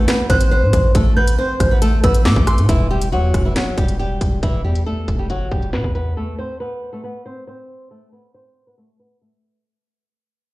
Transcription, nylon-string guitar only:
0.08 0.26 B3 medium
0.08 0.25 B4 medium
0.30 0.47 C4 medium
0.30 0.47 C5 loud
0.51 0.93 C4 medium
0.51 0.92 C5 loud
0.95 1.12 A3 medium
0.95 1.12 A4 medium
1.17 1.34 B3 medium
1.17 1.34 B4 medium
1.39 1.70 C4 medium
1.39 1.69 C5 medium
1.71 1.80 B3 medium
1.71 1.80 B4 medium
1.82 1.99 A3 medium
1.82 1.99 A4 medium
2.04 2.21 B3 medium
2.04 2.21 B4 medium
2.25 2.67 A3 medium
2.25 2.66 A4 medium
2.69 2.86 E3 medium
2.69 2.86 E4 medium
2.91 3.08 G3 medium
2.91 3.08 G4 medium
3.12 3.43 F#3 medium
3.12 3.43 F#4 medium
3.45 3.54 E3 medium
3.45 3.54 E4 medium
3.56 3.73 F#3 medium
3.56 3.73 F#4 medium
3.78 3.95 G3 medium
3.78 3.95 G4 medium
3.99 4.41 G3 medium
3.99 4.40 G4 medium
4.43 4.60 E3 medium
4.43 4.60 E4 loud
4.65 4.82 G3 medium
4.65 4.82 G4 medium
4.86 5.17 A3 medium
4.86 5.17 A4 medium
5.19 5.28 G3 medium
5.19 5.27 G4 medium
5.30 5.47 F#3 medium
5.30 5.47 F#4 medium
5.52 5.69 G3 medium
5.52 5.69 G4 medium
5.73 5.91 B3 medium
5.73 5.90 B4 medium
5.95 6.13 B3 medium
5.95 6.12 B4 medium
6.17 6.34 A3 medium
6.17 6.34 A4 medium
6.39 6.56 C4 medium
6.39 6.56 C5 medium
6.60 6.91 B3 medium
6.60 6.91 B4 medium
6.93 7.02 A3 medium
6.93 7.01 A4 medium
7.04 7.21 B3 medium
7.04 7.21 B4 medium
7.26 7.43 C4 medium
7.26 7.43 C5 medium
7.47 7.89 C4 medium
7.47 7.88 C5 medium
7.91 8.08 A3 medium
7.91 8.08 A4 medium
8.12 8.30 B3 medium
8.12 8.29 B4 medium
8.34 8.65 C4 medium
8.34 8.65 C5 medium
8.67 8.76 B3 medium
8.67 8.75 B4 medium
8.78 8.95 A3 medium
8.78 8.95 A4 medium
9.00 9.17 B3 medium
9.00 9.17 B4 medium
9.21 9.63 A3 medium
9.21 9.62 A4 medium

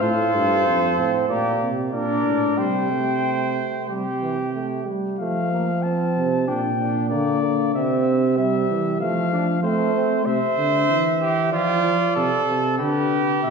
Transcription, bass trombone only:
0.03 0.36 A2 medium
0.34 0.67 G2 medium
0.66 0.97 F2 medium
0.97 1.28 A2 medium
1.29 1.60 A#2 medium
1.61 1.92 C3 medium
1.93 2.24 A#2 medium
2.25 2.57 A2 medium
2.58 3.58 C3 medium
3.89 4.83 C3 soft
5.20 6.12 F3 medium
6.17 6.47 C3 medium
6.49 7.14 A#2 medium
7.12 7.75 D3 medium
7.75 8.68 C3 medium
8.70 9.00 E3 medium
9.01 9.62 F3 medium
9.63 10.24 A3 medium
10.26 10.40 C3 medium
10.57 10.88 D3 medium
10.88 11.50 E3 medium
11.52 11.83 F3 medium
11.84 11.98 F3 medium
12.16 12.30 C3 medium
12.47 12.81 C3 medium
12.79 13.20 D3 medium
13.43 13.50 B2 medium

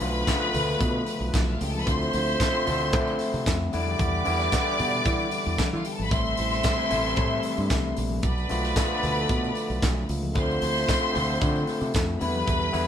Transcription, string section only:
0.00 1.25 B4 medium
0.00 1.25 B5 loud
1.34 1.43 D4 medium
1.34 1.42 D5 medium
1.42 1.51 E4 medium
1.42 1.51 E5 medium
1.52 1.61 F4 medium
1.52 1.61 F5 medium
1.61 1.70 G4 medium
1.61 1.70 G5 medium
1.71 1.79 A4 medium
1.71 1.79 A5 medium
1.79 1.87 B4 loud
1.79 1.87 B5 loud
1.88 3.44 C5 medium
1.88 3.44 C6 loud
3.74 5.67 D5 loud
3.74 5.67 D6 loud
5.76 5.85 F4 medium
5.76 5.85 F5 medium
5.85 5.94 G4 medium
5.85 5.94 G5 medium
5.94 6.03 A4 medium
5.94 6.02 A5 medium
6.03 6.12 B4 medium
6.03 6.12 B5 loud
6.12 7.94 C5 medium
6.12 7.94 C6 loud
8.23 10.05 B4 loud
8.23 10.05 B5 loud
10.35 11.91 C5 loud
10.35 11.91 C6 loud
12.21 12.87 B4 loud
12.21 12.87 B5 loud

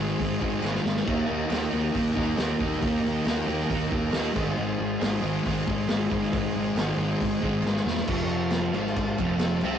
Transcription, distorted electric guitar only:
0.00 0.18 G#2 medium
0.00 0.20 D#3 medium
0.00 0.22 G#3 medium
0.00 0.65 D#4 medium
0.19 0.43 G#2 medium
0.19 0.41 D#3 medium
0.23 0.39 G#3 medium
0.40 0.63 D#3 medium
0.40 0.65 G#3 medium
0.44 0.60 G#2 medium
0.61 1.05 G#2 medium
0.61 0.87 D#3 medium
0.66 0.82 G#3 medium
0.83 1.04 G#3 medium
0.88 1.04 D#3 medium
1.05 1.46 D#3 loud
1.05 1.30 A#3 loud
1.11 1.25 D#4 loud
1.25 1.51 D#4 medium
1.31 1.49 A#3 medium
1.47 1.74 D#3 medium
1.47 1.72 A#3 medium
1.51 1.70 D#4 medium
1.71 1.94 A#3 medium
1.71 1.97 D#4 medium
1.75 1.91 D#3 medium
1.92 2.18 D#3 medium
1.92 2.15 A#3 medium
1.98 2.14 D#4 medium
2.15 2.38 A#3 medium
2.15 2.40 D#4 medium
2.19 2.35 D#3 medium
2.36 2.80 D#3 medium
2.36 2.63 A#3 medium
2.41 2.59 D#4 medium
2.59 2.85 D#4 medium
2.64 2.82 A#3 medium
2.81 3.24 D#3 loud
2.81 3.07 A#3 loud
2.86 3.03 D#4 loud
3.04 3.30 D#4 medium
3.08 3.26 A#3 medium
3.25 3.51 D#3 medium
3.25 3.48 A#3 medium
3.30 3.46 D#4 medium
3.47 3.70 A#3 medium
3.47 3.73 D#4 medium
3.52 3.67 D#3 medium
3.68 3.93 D#3 medium
3.68 3.92 A#3 medium
3.73 3.90 D#4 medium
3.90 4.13 A#3 medium
3.90 4.16 D#4 medium
3.94 4.10 D#3 medium
4.11 4.33 D#3 medium
4.11 4.33 A#3 medium
4.16 7.66 D#4 medium
4.33 4.56 D#3 medium
4.33 4.59 G#3 medium
4.38 4.54 G#2 medium
4.55 5.00 G#2 loud
4.55 4.82 D#3 loud
4.60 4.79 G#3 loud
4.79 5.04 G#3 medium
4.84 5.02 D#3 medium
5.00 5.25 G#2 medium
5.00 5.23 D#3 medium
5.00 5.21 G#3 medium
5.21 5.45 D#3 medium
5.21 5.47 G#3 medium
5.26 5.42 G#2 medium
5.43 5.70 G#2 medium
5.43 5.68 D#3 medium
5.48 5.65 G#3 medium
5.66 5.90 D#3 medium
5.66 5.93 G#3 medium
5.71 5.87 G#2 medium
5.89 6.31 G#2 medium
5.89 6.15 D#3 medium
5.94 6.09 G#3 medium
6.10 6.37 G#3 medium
6.16 6.34 D#3 medium
6.32 6.76 G#2 loud
6.32 6.59 D#3 loud
6.38 6.55 G#3 loud
6.56 6.82 G#3 medium
6.60 6.79 D#3 medium
6.78 7.04 G#2 medium
6.78 7.01 D#3 medium
6.83 6.98 G#3 medium
7.00 7.22 D#3 medium
7.00 7.24 G#3 loud
7.05 7.19 G#2 medium
7.20 7.45 G#2 medium
7.20 7.42 D#3 medium
7.25 7.40 G#3 medium
7.41 7.65 D#3 medium
7.41 7.67 G#3 medium
7.46 7.63 G#2 medium
7.64 8.06 G#2 medium
7.64 7.90 D#3 medium
7.68 7.85 G#3 medium
7.86 8.07 G#3 medium
7.91 8.09 D#3 medium
8.07 8.72 F2 loud
8.07 8.73 F3 loud
8.74 9.16 G#2 medium
8.74 9.17 G#3 loud
9.19 9.61 F2 loud
9.19 9.61 F3 medium
9.63 9.79 C3 loud
9.63 9.79 C4 loud

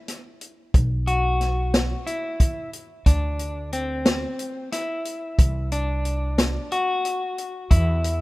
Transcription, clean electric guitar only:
0.00 1.16 E4 medium
1.07 2.10 F#4 loud
2.07 2.69 E4 medium
3.06 3.73 D4 medium
3.73 4.69 C4 medium
4.72 5.72 E4 medium
5.72 6.75 D4 medium
6.72 7.74 F#4 loud
7.71 8.21 E4 loud

